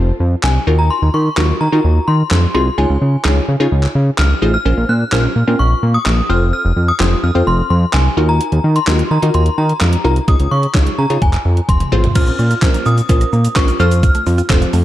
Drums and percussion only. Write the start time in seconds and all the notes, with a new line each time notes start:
0.43 snare, clap
1.37 snare, clap
2.31 snare, clap
3.25 snare, clap
3.83 clap
4.18 snare, clap
5.12 snare, clap
6.06 snare, clap
7.00 snare, clap
7.93 snare, clap
8.41 closed hi-hat
8.52 closed hi-hat
8.76 closed hi-hat
8.87 snare, clap, closed hi-hat
8.99 closed hi-hat
9.23 closed hi-hat
9.34 closed hi-hat
9.46 closed hi-hat
9.69 closed hi-hat
9.81 snare, clap, closed hi-hat
9.93 closed hi-hat
10.16 closed hi-hat
10.28 kick, closed hi-hat
10.40 closed hi-hat
10.63 closed hi-hat
10.75 kick, snare, clap, closed hi-hat
10.87 closed hi-hat
11.10 closed hi-hat
11.22 kick, closed hi-hat
11.33 clap, closed hi-hat
11.57 closed hi-hat
11.69 kick, closed hi-hat, high tom
11.80 closed hi-hat, mid tom
11.92 mid tom
12.04 closed hi-hat, floor tom
12.15 kick, closed hi-hat, crash, shaker
12.27 closed hi-hat, shaker
12.39 shaker
12.51 closed hi-hat, shaker
12.62 kick, snare, clap, closed hi-hat, shaker
12.74 closed hi-hat, shaker
12.86 shaker
12.98 closed hi-hat, shaker
13.09 kick, closed hi-hat, shaker
13.21 closed hi-hat, shaker
13.33 shaker
13.45 closed hi-hat, shaker
13.56 kick, snare, clap, closed hi-hat, shaker
13.68 closed hi-hat, shaker
13.80 shaker
13.91 closed hi-hat, shaker
14.03 kick, closed hi-hat, shaker
14.15 closed hi-hat, shaker
14.27 open hi-hat, shaker
14.38 closed hi-hat, shaker
14.50 kick, snare, clap, closed hi-hat, shaker
14.62 closed hi-hat, shaker
14.73 open hi-hat, shaker